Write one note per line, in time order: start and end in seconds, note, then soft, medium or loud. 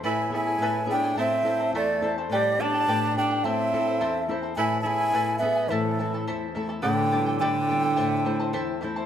0.03 0.57 A2 medium
0.03 0.32 E4 medium
0.03 0.31 E4 medium
0.03 0.33 A4 medium
0.03 0.32 B4 medium
0.03 0.31 E5 medium
0.03 0.33 G#5 medium
0.03 0.31 G#5 loud
0.30 0.76 B3 soft
0.30 0.77 E4 soft
0.30 0.47 E4 medium
0.30 0.77 G#4 medium
0.30 0.46 A4 medium
0.30 0.47 E5 medium
0.30 0.45 G#5 medium
0.34 0.86 E4 medium
0.34 0.87 G#5 medium
0.47 0.61 E4 soft
0.47 0.61 A4 soft
0.47 0.61 G#5 medium
0.59 1.15 A2 medium
0.59 0.88 E4 medium
0.59 0.90 B4 medium
0.59 0.88 E5 medium
0.59 0.89 G#5 medium
0.63 0.89 A4 medium
0.86 1.10 B3 medium
0.86 1.10 E4 medium
0.86 1.04 E4 medium
0.86 1.11 G#4 medium
0.86 1.03 A4 medium
0.86 1.03 E5 medium
0.86 1.03 G#5 medium
0.91 1.17 D4 medium
0.91 1.16 G5 loud
1.04 1.16 E4 soft
1.04 1.16 A4 soft
1.04 1.18 G#5 medium
1.16 1.72 A2 medium
1.16 1.71 C4 medium
1.16 1.45 E4 medium
1.16 1.46 A4 medium
1.16 1.45 C5 medium
1.16 1.45 E5 medium
1.16 1.71 E5 loud
1.16 1.46 A5 medium
1.43 1.90 C4 soft
1.43 1.90 E4 soft
1.43 1.60 E4 medium
1.43 1.90 A4 medium
1.43 1.59 C5 medium
1.43 1.60 E5 medium
1.43 1.59 A5 medium
1.60 1.74 E4 soft
1.60 1.74 C5 soft
1.60 1.74 A5 soft
1.73 2.28 E2 medium
1.73 2.14 A3 medium
1.73 2.02 E4 medium
1.73 2.03 A4 medium
1.73 2.02 C5 medium
1.73 2.15 D5 medium
1.73 2.01 E5 medium
1.73 2.03 A5 medium
2.01 2.24 C4 soft
2.01 2.25 E4 soft
2.01 2.17 E4 medium
2.01 2.25 A4 medium
2.01 2.17 C5 medium
2.01 2.17 E5 medium
2.01 2.17 A5 medium
2.18 2.32 E4 soft
2.18 2.32 C5 soft
2.18 2.31 A5 medium
2.30 2.85 A2 medium
2.30 2.59 G4 medium
2.30 2.60 A4 medium
2.30 2.60 B4 medium
2.30 2.63 D5 medium
2.30 2.59 D5 medium
2.30 2.60 G5 medium
2.34 2.63 G3 medium
2.58 3.04 B3 soft
2.58 3.04 D4 soft
2.58 3.17 D4 medium
2.58 3.05 G4 medium
2.58 2.74 G4 soft
2.58 2.74 A4 medium
2.58 2.74 D5 medium
2.58 2.73 G5 medium
2.58 3.17 A5 loud
2.74 2.87 G4 soft
2.74 2.88 A4 soft
2.74 2.88 G5 medium
2.88 3.43 A2 medium
2.88 3.16 G4 medium
2.88 3.17 A4 medium
2.88 3.16 B4 medium
2.88 3.15 D5 medium
2.88 3.17 G5 medium
3.14 3.38 B3 medium
3.14 3.38 D4 soft
3.14 3.46 D4 medium
3.14 3.38 G4 medium
3.14 3.31 G4 medium
3.14 3.30 D5 medium
3.18 3.31 A4 medium
3.18 3.29 G5 medium
3.18 3.46 G5 medium
3.31 3.45 G4 soft
3.31 3.43 A4 soft
3.31 3.45 G5 medium
3.44 3.99 A2 medium
3.44 4.30 C4 medium
3.44 3.72 E4 medium
3.44 3.73 A4 medium
3.44 3.73 C5 medium
3.44 4.29 E5 medium
3.44 3.72 E5 medium
3.44 3.73 A5 medium
3.73 4.19 C4 medium
3.73 3.87 E4 medium
3.73 4.19 E4 soft
3.73 4.19 A4 medium
3.73 3.86 C5 medium
3.73 3.87 E5 medium
3.73 3.86 A5 medium
3.87 4.00 E4 soft
3.87 4.00 C5 soft
3.87 4.00 A5 medium
4.01 4.56 E2 medium
4.01 4.28 E4 medium
4.01 4.29 A4 medium
4.01 4.29 C5 medium
4.01 4.28 E5 medium
4.01 4.29 A5 medium
4.28 4.51 C4 medium
4.28 4.52 E4 medium
4.28 4.43 E4 medium
4.28 4.52 A4 medium
4.28 4.42 C5 medium
4.28 4.43 E5 medium
4.28 4.42 A5 medium
4.43 4.57 E4 soft
4.43 4.56 C5 soft
4.43 4.57 A5 medium
4.56 5.12 A2 medium
4.56 4.84 E4 medium
4.56 4.83 E4 medium
4.56 4.85 A4 loud
4.56 4.86 B4 medium
4.56 4.83 E5 medium
4.56 4.81 G#5 loud
4.56 4.85 G#5 medium
4.81 5.30 B3 medium
4.81 5.37 E4 medium
4.81 5.31 E4 soft
4.81 4.99 E5 medium
4.81 4.87 A5 loud
4.86 5.00 E4 medium
4.86 5.31 G#4 medium
4.86 4.99 A4 medium
4.86 5.36 G#5 loud
4.86 4.98 G#5 medium
5.00 5.13 E4 soft
5.00 5.13 A4 soft
5.00 5.14 G#5 medium
5.13 5.69 A2 medium
5.13 5.40 E4 medium
5.13 5.41 A4 medium
5.13 5.42 B4 medium
5.13 5.40 E5 medium
5.13 5.41 G#5 medium
5.38 5.70 B3 medium
5.38 5.65 B3 medium
5.38 5.56 E4 medium
5.38 5.55 A4 medium
5.38 5.70 E5 medium
5.38 5.56 E5 soft
5.42 5.66 E4 soft
5.42 5.66 G#4 medium
5.42 5.54 G#5 medium
5.55 5.69 E4 soft
5.55 5.70 A4 medium
5.55 5.70 G#5 medium
5.68 6.26 A2 medium
5.68 6.26 E3 medium
5.68 5.98 E4 medium
5.68 5.98 A4 medium
5.68 5.73 B4 medium
5.68 5.99 C5 medium
5.68 5.97 E5 medium
5.68 5.98 A5 medium
5.72 6.27 A4 medium
5.99 6.45 A3 medium
5.99 6.46 C4 soft
5.99 6.13 E4 medium
5.99 6.45 E4 medium
5.99 6.13 A4 medium
5.99 6.13 E5 medium
5.99 6.13 A5 medium
6.14 6.26 E4 soft
6.14 6.27 A4 soft
6.14 6.27 A5 medium
6.27 6.84 E2 medium
6.27 6.54 E4 medium
6.27 6.54 A4 medium
6.27 6.56 C5 medium
6.27 6.54 E5 medium
6.27 6.55 A5 medium
6.55 6.78 A3 soft
6.55 6.79 C4 soft
6.55 6.69 E4 medium
6.55 6.79 E4 medium
6.55 6.68 A4 medium
6.55 6.69 E5 medium
6.55 6.68 A5 medium
6.69 6.82 E4 soft
6.69 6.82 A4 medium
6.69 6.83 A5 medium
6.82 7.39 A2 medium
6.82 7.36 D3 medium
6.82 7.11 G4 medium
6.82 7.12 A4 medium
6.82 7.11 B4 medium
6.82 7.11 D5 medium
6.82 7.36 G5 loud
6.82 7.11 G5 medium
7.12 7.58 G3 medium
7.12 7.58 B3 soft
7.12 7.58 D4 medium
7.12 7.27 G4 medium
7.12 7.26 A4 medium
7.12 7.26 D5 medium
7.12 7.25 G5 medium
7.26 7.40 G4 soft
7.26 7.40 A4 soft
7.26 7.41 G5 medium
7.39 7.96 A2 medium
7.39 8.78 D3 loud
7.39 7.68 G4 medium
7.39 7.69 A4 loud
7.39 7.69 B4 medium
7.39 7.67 D5 medium
7.39 7.69 G5 medium
7.39 8.77 G5 loud
7.39 7.43 G#5 medium
7.68 7.93 G3 medium
7.68 7.93 B3 soft
7.68 7.93 D4 medium
7.68 7.83 G4 medium
7.68 7.83 A4 medium
7.68 7.83 D5 medium
7.68 7.82 G5 medium
7.83 7.96 G4 soft
7.83 7.95 A4 medium
7.83 7.97 G5 medium
7.96 8.53 A2 medium
7.96 8.24 E4 medium
7.96 8.25 A4 medium
7.96 8.24 C5 medium
7.96 8.23 E5 medium
7.96 8.25 A5 loud
8.25 8.71 A3 medium
8.25 8.71 C4 soft
8.25 8.40 E4 medium
8.25 8.71 E4 medium
8.25 8.39 C5 medium
8.25 8.39 E5 medium
8.25 8.38 A5 medium
8.40 8.52 E4 medium
8.40 8.53 C5 medium
8.40 8.53 A5 medium
8.53 9.06 E2 medium
8.53 8.81 E4 medium
8.53 8.81 A4 loud
8.53 8.81 C5 medium
8.53 8.80 E5 medium
8.53 8.81 A5 loud
8.81 9.05 A3 medium
8.81 9.06 C4 medium
8.81 8.96 E4 medium
8.81 9.06 E4 medium
8.81 8.96 C5 medium
8.81 8.96 E5 medium
8.81 8.95 A5 medium
8.96 9.06 E4 soft
8.96 9.06 C5 soft
8.96 9.06 A5 medium